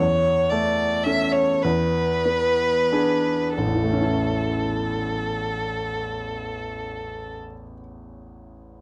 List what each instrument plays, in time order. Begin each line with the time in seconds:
Already playing: violin C#5
0.00 grand piano E2
0.50 grand piano A3, violin D5
1.04 grand piano C#4 A4, violin E5
1.32 violin C#5
1.62 grand piano E2, violin B4
2.25 grand piano B3
2.92 grand piano D4 G#4
3.55 grand piano A1, violin A4
3.66 grand piano E2
3.75 grand piano E3
3.83 grand piano A3
3.93 grand piano C#4
4.01 grand piano E4